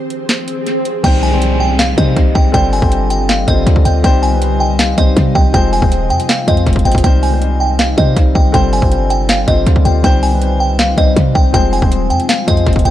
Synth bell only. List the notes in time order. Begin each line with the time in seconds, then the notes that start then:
1.04 G5
1.23 G#5
1.60 G5
1.79 F5
1.98 D#5
2.35 G5
2.54 G5
2.73 G#5
3.10 G5
3.29 F5
3.48 D#5
3.85 G5
4.04 G5
4.23 G#5
4.60 G5
4.79 F5
4.98 D#5
5.35 G5
5.54 G5
5.73 G#5
6.10 G5
6.29 F5
6.48 D#5
6.85 G5
7.04 G5
7.23 G#5
7.60 G5
7.79 F5
7.98 D#5
8.35 G5
8.54 G5
8.73 G#5
9.10 G5
9.29 F5
9.48 D#5
9.85 G5
10.04 G5
10.23 G#5
10.60 G5
10.79 F5
10.98 D#5
11.35 G5
11.54 G5
11.73 G#5
12.10 G5
12.29 F5
12.48 D#5
12.85 G5